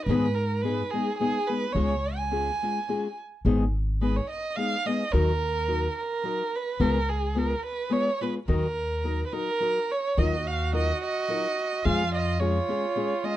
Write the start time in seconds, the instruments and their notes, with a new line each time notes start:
0.06 upright bass G#2, nylon-string guitar G#2 D#3 G#3, violin B4
0.10 nylon-string guitar B3 D#4 G#4
0.35 violin A#4
0.62 nylon-string guitar G#3 B3 D#4 G#4, violin B4
0.91 nylon-string guitar G#3 B3 D#4 G#4, violin G#4
1.18 nylon-string guitar G#3 B3 D#4 G#4, violin G#4
1.47 nylon-string guitar G#3 B3 D#4 G#4, violin B4
1.73 upright bass C#2, nylon-string guitar C#3 G#3 C#4 F4 G#4, violin C#5
2.16 violin G#5
2.31 nylon-string guitar G#3 C#4 F4 G#4
2.63 nylon-string guitar G#3 C#4 F4 G#4
2.89 nylon-string guitar G#3 C#4 F4 G#4
3.45 upright bass G#1, nylon-string guitar G#2 D#3 G#3 B3 D#4 G#4
4.01 nylon-string guitar G#3 B3 D#4 G#4, violin B4
4.16 violin C#5
4.30 violin D#5
4.56 nylon-string guitar G#3 B3 D#4 G#4, violin F5
4.85 nylon-string guitar G#3 B3 D#4 G#4, violin D#5
5.12 upright bass D#2, nylon-string guitar D#3 F#3 D#4 F#4 A#4, violin A#4
5.68 nylon-string guitar F#3 D#4 F#4 A#4
5.98 violin A#4
6.23 nylon-string guitar F#3 D#4 F#4 A#4
6.55 violin B4
6.80 upright bass C#2, nylon-string guitar C#3 G#3 B3 F4 B4, violin A#4
7.09 violin G#4
7.35 nylon-string guitar G#3 B3 F4 B4, violin A#4
7.65 violin B4
7.90 nylon-string guitar G#3 B3 F4 B4, violin C#5
8.21 nylon-string guitar G#3 B3 F4 B4, violin B4
8.48 upright bass D#2, nylon-string guitar D#3 F#3 D#4 F#4 A#4, violin A#4
9.03 nylon-string guitar F#3 D#4 F#4 A#4
9.26 violin B4
9.32 nylon-string guitar F#3 D#4 F#4 A#4, violin A#4
9.60 nylon-string guitar F#3 D#4 F#4 A#4
9.92 violin C#5
10.17 upright bass D#2, nylon-string guitar D#3 F#3 D#4 F4 A#4, trumpet F#4, violin D#5
10.47 violin F5
10.72 nylon-string guitar F#3 D#4 F4 A#4, violin D#5
11.04 violin D#5
11.28 nylon-string guitar F#3 D#4 F4 A#4
11.84 upright bass F2, nylon-string guitar F3 G#3 C#4 F4 G#4, trumpet F4, violin F5
12.15 violin D#5
12.39 nylon-string guitar G#3 C#4 F4 G#4, trumpet F4, violin C#5
12.68 nylon-string guitar G#3 C#4 F4 G#4
12.95 nylon-string guitar G#3 C#4 F4 G#4
13.23 nylon-string guitar G#3 C#4 F4 G#4, violin D#5